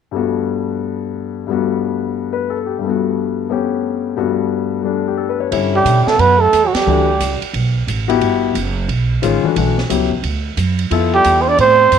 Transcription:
0.12 grand piano G2 G3 A3 B3
0.16 grand piano F#4
1.47 grand piano G2 G3 A3 B3
1.52 grand piano F#4
2.33 grand piano B4
2.50 grand piano A4
2.66 grand piano G4
2.78 grand piano G2 G3
2.84 grand piano A3 B3
2.89 grand piano F#4
3.49 grand piano A3 B3 C#4 G4
4.16 grand piano G2 G3 A3 B3 F#4
4.82 grand piano G3 A3 D4
5.08 grand piano G4
5.17 grand piano A4
5.29 grand piano B4
5.40 grand piano C#5
5.51 upright bass G2, grand piano D3 G3 C#4 E4, ride
5.74 trombone G3, trumpet G4
5.85 upright bass B2, hi-hat pedal, ride
6.02 trombone G3 A3, trumpet G4
6.07 trumpet A4, muted upright bass stroke, snare
6.17 upright bass F#2, trombone B3, trumpet B4, ride
6.38 trombone A3, trumpet A4
6.53 upright bass E2, hi-hat pedal, ride
6.65 trombone F#3, trumpet F#4
6.72 trombone G3, trumpet G4, muted upright bass stroke, snare, ride
6.86 upright bass D2, grand piano E3 A3 D4 F#4
7.20 upright bass C#2, hi-hat pedal, ride
7.42 muted upright bass stroke, ride
7.53 upright bass B1, ride
7.87 upright bass A1, hi-hat pedal, ride
8.08 grand piano B3 E4 F#4 G4, ride
8.21 upright bass G1, ride
8.55 upright bass F#1, hi-hat pedal, ride
8.88 upright bass B1, ride
9.22 upright bass A1, grand piano D#3 G#3 C#4 F4, hi-hat pedal, ride
9.43 grand piano E3 A3 D4 F#4, muted upright bass stroke
9.56 upright bass B1, grand piano E3 A3 D4 F#4, ride
9.78 snare
9.90 upright bass C#2, grand piano F#3 B3 E4 G4, hi-hat pedal, ride
10.11 kick
10.23 upright bass D2, ride
10.57 upright bass F#2, hi-hat pedal, ride
10.79 ride
10.91 upright bass F2, grand piano B3 E4 F4 A4, ride
11.14 trombone G3, trumpet G4
11.24 upright bass E2, hi-hat pedal, ride
11.42 trombone C4, trumpet C5
11.47 trombone D4, trumpet D5
11.58 upright bass A2, trombone C4, trumpet C5, ride
11.92 upright bass G2, hi-hat pedal, ride

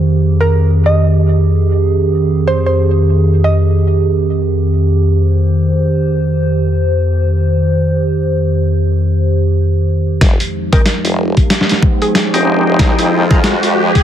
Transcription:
Already playing: ambient pad F2 D#3 G4 G#4
0.41 synth pluck A#4
0.86 synth pluck D#5
2.47 synth pluck C5
2.66 synth pluck C5
3.44 synth pluck D#5
5.05 ambient pad C5
10.21 wobble bass F1, ambient pad F3 G#3 D#4 G4, kick, snare, closed hi-hat, riser
10.40 closed hi-hat
10.72 tonewheel organ G#3 C4 D#4 G4, synth pluck A#4, kick, closed hi-hat
10.86 snare, closed hi-hat
11.05 wobble bass F1, closed hi-hat
11.37 kick, closed hi-hat
11.50 snare, closed hi-hat
11.61 snare
11.69 snare, closed hi-hat
11.83 kick
12.02 synth pluck G#4, closed hi-hat
12.15 synth pluck G#4, snare, closed hi-hat
12.34 wobble bass F1, tonewheel organ G#3 C4 D#4 G4, closed hi-hat
12.66 wobble bass F1
12.79 wobble bass C2, kick, snare, closed hi-hat
12.98 wobble bass F2, closed hi-hat
13.30 tonewheel organ G#3 C4 D#4 A#4, synth pluck G#4, kick, closed hi-hat
13.44 synth pluck G#4, snare, closed hi-hat
13.63 closed hi-hat
13.95 kick, closed hi-hat

